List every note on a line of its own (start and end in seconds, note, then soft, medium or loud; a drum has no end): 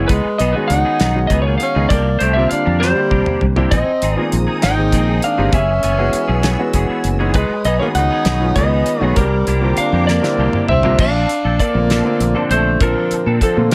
0.08 0.22 C#2 medium
0.08 0.27 F#3 medium
0.08 0.38 G#3 medium
0.08 0.27 B3 medium
0.08 0.27 D#4 medium
0.08 0.28 G#4 medium
0.08 0.39 B4 medium
0.08 kick loud
0.08 closed hi-hat medium
0.38 0.52 B1 medium
0.38 0.55 F#3 medium
0.38 0.54 B3 soft
0.38 0.54 B3 medium
0.38 0.54 D#4 medium
0.38 0.53 G#4 medium
0.38 0.54 D#5 medium
0.38 closed hi-hat medium
0.53 1.10 D#3 medium
0.53 1.11 G#3 medium
0.53 0.70 G#3 medium
0.53 1.11 B3 medium
0.53 0.73 B3 soft
0.53 1.11 C#4 medium
0.53 0.73 D#4 soft
0.53 1.11 F#4 medium
0.53 0.73 G#4 medium
0.53 0.69 B4 medium
0.68 0.82 C#2 medium
0.68 1.27 D#4 medium
0.68 1.31 F#5 loud
0.68 closed hi-hat medium
0.85 0.99 B3 soft
0.85 0.99 D#4 soft
0.85 0.99 G#4 medium
1.00 1.26 B1 medium
1.00 1.18 F#3 medium
1.00 1.18 B3 medium
1.00 1.18 D#4 medium
1.00 1.18 G#4 medium
1.00 snare loud
1.00 closed hi-hat medium
1.15 1.71 D#3 medium
1.15 1.71 G#3 medium
1.15 1.71 B3 medium
1.15 1.71 C#4 medium
1.15 1.71 F#4 medium
1.27 1.56 C#2 medium
1.27 1.45 F#3 medium
1.27 1.45 B3 soft
1.27 1.44 D#4 medium
1.27 1.44 G#4 medium
1.27 1.41 D#5 medium
1.27 kick medium
1.27 closed hi-hat medium
1.32 1.45 B3 medium
1.42 1.64 B3 soft
1.42 1.63 D#4 soft
1.42 1.63 G#4 soft
1.42 1.57 C#5 medium
1.47 1.60 A#3 medium
1.58 1.87 F5 medium
1.58 closed hi-hat medium
1.62 1.89 C#4 medium
1.75 1.88 C#2 medium
1.75 1.91 D#3 medium
1.75 1.91 G#3 medium
1.75 1.89 B3 soft
1.75 1.91 B3 medium
1.75 1.91 C#4 medium
1.75 1.90 D#4 soft
1.75 1.91 D#4 medium
1.75 1.90 G#4 soft
1.89 2.16 C2 medium
1.89 2.08 F3 medium
1.89 2.08 A#3 medium
1.89 2.20 A#3 medium
1.89 2.08 D4 medium
1.89 2.09 G4 medium
1.89 2.21 D5 medium
1.89 kick medium
1.89 closed hi-hat medium
2.19 2.46 C2 medium
2.19 2.35 F3 soft
2.19 2.35 A3 medium
2.19 2.35 A#3 medium
2.19 2.34 D4 medium
2.19 2.34 G4 medium
2.19 2.35 C5 medium
2.19 closed hi-hat medium
2.33 2.92 D3 medium
2.33 2.92 G3 medium
2.33 2.54 A#3 soft
2.33 2.92 A#3 medium
2.33 2.92 C4 medium
2.33 2.54 D4 soft
2.33 2.93 F4 medium
2.33 2.54 G4 medium
2.33 2.49 E5 medium
2.38 2.54 C4 medium
2.49 2.82 D4 medium
2.49 2.81 F5 medium
2.49 muted fretless electric bass stroke soft
2.49 closed hi-hat medium
2.65 2.92 F2 medium
2.65 2.79 A#3 soft
2.65 2.79 D4 soft
2.65 2.79 G4 soft
2.80 2.99 F3 medium
2.80 3.46 G3 medium
2.80 2.99 A#3 medium
2.80 2.99 D4 medium
2.80 2.99 G4 medium
2.80 3.45 C5 medium
2.80 snare medium
2.96 3.52 D3 medium
2.96 3.52 G3 medium
2.96 3.53 A#3 medium
2.96 3.52 C4 medium
2.96 3.53 G4 medium
3.10 3.24 C2 medium
3.10 3.26 F3 soft
3.10 3.26 A#3 medium
3.10 3.25 D4 medium
3.10 3.25 G4 medium
3.10 kick medium
3.26 3.45 A#3 soft
3.26 3.45 D4 soft
3.26 3.44 G4 soft
3.26 muted fretless electric bass stroke soft
3.26 mid tom medium
3.41 3.68 C2 medium
3.41 floor tom medium
3.56 3.72 D3 medium
3.56 3.72 G3 medium
3.56 3.72 A#3 medium
3.56 3.71 A#3 soft
3.56 3.72 C4 medium
3.56 3.72 D4 soft
3.56 3.72 E4 medium
3.56 3.72 G4 soft
3.56 floor tom medium
3.71 3.85 A#1 medium
3.71 3.90 F3 medium
3.71 3.90 C4 medium
3.71 4.13 C4 medium
3.71 3.90 D#4 medium
3.71 7.32 G#4 medium
3.71 3.90 G#4 medium
3.71 4.12 D#5 medium
3.71 5.52 A#5 medium
3.71 kick medium
3.71 closed hi-hat medium
4.02 4.15 G#1 medium
4.02 4.17 F3 soft
4.02 4.17 C4 medium
4.02 4.16 D#4 medium
4.02 4.16 G#4 medium
4.02 closed hi-hat medium
4.12 4.29 B3 medium
4.12 4.28 D5 medium
4.16 4.73 D#3 medium
4.16 4.73 G#3 medium
4.16 4.73 A#3 medium
4.16 4.74 C4 medium
4.16 4.36 C4 soft
4.16 4.36 D#4 soft
4.16 4.74 F4 medium
4.16 4.35 G#4 soft
4.32 4.45 A#1 medium
4.32 closed hi-hat medium
4.47 4.61 C4 soft
4.47 4.61 D#4 soft
4.47 4.62 G#4 soft
4.62 4.89 G#1 medium
4.62 4.81 F3 medium
4.62 4.80 C4 medium
4.62 4.81 D#4 medium
4.62 5.20 D#4 medium
4.62 4.81 G#4 medium
4.62 5.23 G5 medium
4.62 snare loud
4.62 closed hi-hat medium
4.77 5.34 D#3 medium
4.77 5.34 G#3 medium
4.77 5.34 A#3 medium
4.77 5.34 C4 medium
4.77 5.34 G#4 medium
4.92 5.18 A#1 medium
4.92 5.08 F3 medium
4.92 5.08 C4 medium
4.92 5.07 D#4 medium
4.92 5.07 G#4 medium
4.92 kick medium
4.92 closed hi-hat medium
5.08 5.27 C4 soft
5.08 5.27 D#4 soft
5.08 5.26 G#4 soft
5.22 5.52 D4 medium
5.22 5.52 F5 medium
5.22 closed hi-hat medium
5.37 5.51 G1 medium
5.37 5.53 D#3 medium
5.37 5.53 G#3 medium
5.37 5.53 A#3 medium
5.37 5.53 C4 medium
5.37 5.53 C4 soft
5.37 5.53 D#4 soft
5.37 5.53 G4 medium
5.37 5.52 G#4 soft
5.53 5.79 F#1 medium
5.53 5.71 E3 medium
5.53 5.72 B3 medium
5.53 5.72 C#4 medium
5.53 6.71 C#4 medium
5.53 5.72 G#4 medium
5.53 7.33 B4 medium
5.53 6.71 E5 medium
5.53 9.13 G#5 medium
5.53 7.33 E6 medium
5.53 kick loud
5.53 closed hi-hat medium
5.83 6.09 F#1 medium
5.83 5.98 E3 soft
5.83 5.98 B3 medium
5.83 5.97 C#4 medium
5.83 5.97 G#4 medium
5.83 closed hi-hat medium
5.98 6.55 E3 medium
5.98 6.55 G#3 medium
5.98 6.55 B3 medium
5.98 6.17 B3 soft
5.98 6.17 C#4 soft
5.98 6.55 C#4 medium
5.98 6.55 F#4 medium
5.98 6.17 G#4 medium
6.13 muted fretless electric bass stroke soft
6.13 closed hi-hat medium
6.28 6.54 B1 medium
6.28 6.42 B3 soft
6.28 6.42 C#4 soft
6.28 6.42 G#4 medium
6.42 6.62 E3 medium
6.42 6.62 B3 medium
6.42 6.62 C#4 medium
6.42 6.62 G#4 medium
6.42 snare loud
6.42 closed hi-hat medium
6.59 7.15 E3 medium
6.59 7.16 G#3 medium
6.59 7.16 B3 medium
6.59 7.16 C#4 medium
6.59 7.16 F#4 medium
6.73 6.87 F#1 medium
6.73 6.89 E3 medium
6.73 6.88 B3 medium
6.73 6.88 C#4 medium
6.73 6.87 G#4 medium
6.73 kick medium
6.73 closed hi-hat medium
6.88 7.08 B3 soft
6.88 7.08 C#4 medium
6.88 7.07 G#4 soft
6.88 muted fretless electric bass stroke soft
7.04 7.30 F#1 medium
7.04 closed hi-hat medium
7.19 7.35 E3 medium
7.19 7.35 G#3 medium
7.19 7.35 B3 medium
7.19 7.33 B3 soft
7.19 7.34 C#4 soft
7.19 7.35 C#4 medium
7.19 7.35 D#4 medium
7.19 7.33 G#4 soft
7.34 7.48 C#2 medium
7.34 7.53 F#3 medium
7.34 7.64 G#3 medium
7.34 7.53 B3 medium
7.34 7.53 D#4 medium
7.34 7.53 G#4 medium
7.34 7.63 B4 medium
7.34 9.14 C#5 medium
7.34 9.15 B5 medium
7.34 9.15 D#6 medium
7.34 kick medium
7.34 closed hi-hat medium
7.49 muted fretless electric bass stroke soft
7.64 7.78 B1 medium
7.64 7.80 F#3 medium
7.64 7.80 B3 medium
7.64 7.81 B3 medium
7.64 7.80 D#4 medium
7.64 7.79 G#4 medium
7.64 7.79 D#5 medium
7.64 closed hi-hat medium
7.80 8.37 D#3 medium
7.80 8.37 G#3 medium
7.80 7.89 A#3 medium
7.80 8.37 B3 medium
7.80 7.99 B3 soft
7.80 8.37 C#4 medium
7.80 7.99 D#4 soft
7.80 8.37 F#4 medium
7.80 7.99 G#4 medium
7.80 7.85 C#5 medium
7.95 8.08 C#2 medium
7.95 8.53 D#4 medium
7.95 8.58 F#5 medium
7.95 closed hi-hat medium
8.11 8.25 B3 soft
8.11 8.25 D#4 soft
8.11 8.26 G#4 soft
8.25 8.51 B1 medium
8.25 8.44 F#3 medium
8.25 8.44 B3 medium
8.25 8.44 D#4 medium
8.25 8.45 G#4 medium
8.25 snare loud
8.25 closed hi-hat medium
8.40 8.97 D#3 medium
8.40 8.97 G#3 medium
8.40 8.97 B3 medium
8.40 8.98 C#4 medium
8.40 8.97 F4 medium
8.56 8.82 C#2 medium
8.56 8.72 F#3 soft
8.56 8.72 B3 medium
8.56 9.01 B3 medium
8.56 8.72 D#4 medium
8.56 8.71 G#4 medium
8.56 9.04 D#5 medium
8.56 kick medium
8.56 closed hi-hat medium
8.72 8.91 B3 soft
8.72 8.91 D#4 soft
8.72 8.90 G#4 soft
8.86 closed hi-hat soft
9.00 9.14 B1 medium
9.00 9.16 D#3 medium
9.00 9.16 G#3 medium
9.00 9.14 A3 medium
9.00 9.16 B3 medium
9.00 9.17 B3 soft
9.00 9.17 C#4 medium
9.00 9.17 D#4 soft
9.00 9.17 F#4 medium
9.00 9.17 G#4 medium
9.00 9.19 C#5 medium
9.16 9.42 C2 medium
9.16 9.35 F3 medium
9.16 9.74 G3 medium
9.16 9.35 A#3 medium
9.16 9.35 D4 medium
9.16 9.36 G4 medium
9.16 10.34 A#4 medium
9.16 10.96 C5 medium
9.16 10.96 G5 medium
9.16 10.96 A#5 medium
9.16 10.96 D6 medium
9.16 kick medium
9.16 closed hi-hat medium
9.47 9.73 C2 medium
9.47 9.62 F3 soft
9.47 9.63 A#3 medium
9.47 9.62 D4 medium
9.47 9.61 G4 medium
9.47 closed hi-hat medium
9.61 10.18 D3 medium
9.61 10.18 G3 medium
9.61 10.19 A#3 medium
9.61 9.81 A#3 soft
9.61 10.19 C4 medium
9.61 9.81 D4 soft
9.61 10.19 F4 medium
9.61 9.81 G4 medium
9.77 10.07 D4 medium
9.77 10.07 F5 medium
9.77 closed hi-hat medium
9.92 10.18 F2 medium
9.92 10.07 A#3 soft
9.92 10.07 D4 soft
9.92 10.07 G4 medium
10.07 10.26 F3 medium
10.07 10.26 A#3 medium
10.07 10.65 A#3 medium
10.07 10.26 D4 medium
10.07 10.26 G4 medium
10.07 10.68 D5 medium
10.07 snare medium
10.22 10.79 D3 medium
10.22 10.79 G3 medium
10.22 10.79 A#3 medium
10.22 10.79 C4 medium
10.22 10.79 E4 medium
10.22 snare soft
10.38 10.51 C2 medium
10.38 10.54 F3 medium
10.38 10.54 A#3 medium
10.38 10.53 D4 medium
10.38 10.53 G4 medium
10.38 10.95 D5 medium
10.53 10.73 A#3 soft
10.53 10.72 D4 soft
10.53 10.72 G4 medium
10.53 muted fretless electric bass stroke soft
10.53 mid tom medium
10.68 10.94 C2 medium
10.68 10.98 C4 medium
10.68 11.00 E5 medium
10.68 mid tom medium
10.83 10.99 D3 medium
10.83 10.99 G3 medium
10.83 10.99 A#3 medium
10.83 10.99 A#3 soft
10.83 10.99 C4 medium
10.83 10.98 D4 soft
10.83 10.99 F4 loud
10.83 10.99 G4 soft
10.83 floor tom medium
10.99 11.24 A#1 medium
10.99 11.14 F3 medium
10.99 11.14 C4 medium
10.99 11.14 D4 medium
10.99 11.57 D4 medium
10.99 11.13 A4 medium
10.99 11.60 F5 medium
10.99 kick loud
10.99 crash medium
11.14 11.33 C4 soft
11.14 11.33 D4 soft
11.14 11.32 A4 soft
11.29 closed hi-hat medium
11.44 11.57 A#1 medium
11.44 11.58 C4 soft
11.44 11.59 D4 soft
11.44 11.59 A4 medium
11.59 11.78 F3 medium
11.59 12.47 A#3 medium
11.59 11.78 C4 soft
11.59 11.78 D4 medium
11.59 11.78 A4 medium
11.59 12.53 D5 medium
11.59 kick medium
11.59 closed hi-hat medium
11.74 12.00 A#1 medium
11.74 12.03 D3 medium
11.74 12.03 A3 medium
11.74 12.03 A#3 medium
11.74 12.03 C4 medium
11.74 12.03 F4 medium
11.90 12.05 F3 medium
11.90 12.05 C4 medium
11.90 12.05 D4 medium
11.90 12.04 A4 medium
11.90 snare loud
11.90 closed hi-hat medium
12.04 12.33 D3 medium
12.04 12.33 A3 medium
12.04 12.33 A#3 medium
12.04 12.33 C4 medium
12.04 12.24 C4 soft
12.04 12.24 D4 medium
12.04 12.33 F4 medium
12.04 12.23 A4 medium
12.20 12.33 A#1 medium
12.20 closed hi-hat medium
12.35 13.48 A#2 medium
12.35 13.48 D3 medium
12.35 13.48 F3 medium
12.35 13.48 C4 medium
12.35 12.50 C4 soft
12.35 12.50 D4 medium
12.35 13.48 D4 medium
12.35 12.50 A4 medium
12.50 12.76 A#1 medium
12.50 12.69 F3 medium
12.50 12.80 A3 medium
12.50 12.69 C4 medium
12.50 12.69 D4 medium
12.50 12.69 A4 medium
12.50 12.81 C5 medium
12.50 closed hi-hat medium
12.80 12.93 A#1 medium
12.80 12.96 F3 medium
12.80 13.26 F3 medium
12.80 12.96 C4 medium
12.80 12.96 D4 medium
12.80 12.95 A4 medium
12.80 13.38 A#4 medium
12.80 kick loud
12.80 closed hi-hat medium
12.96 13.15 C4 soft
12.96 13.15 D4 soft
12.96 13.14 A4 medium
13.11 muted fretless electric bass stroke soft
13.11 closed hi-hat medium
13.26 13.39 A#2 medium
13.26 13.41 C4 soft
13.26 13.41 D4 soft
13.26 13.41 A4 soft
13.41 13.60 F3 medium
13.41 13.70 F3 medium
13.41 13.60 C4 medium
13.41 13.60 D4 medium
13.41 13.60 A4 medium
13.41 13.72 A4 medium
13.41 kick medium
13.41 closed hi-hat medium
13.56 13.75 A#2 medium
13.56 13.75 D3 medium
13.56 13.75 A3 medium
13.56 13.75 A#3 medium
13.56 13.75 C4 medium
13.56 13.75 F4 medium
13.71 closed hi-hat medium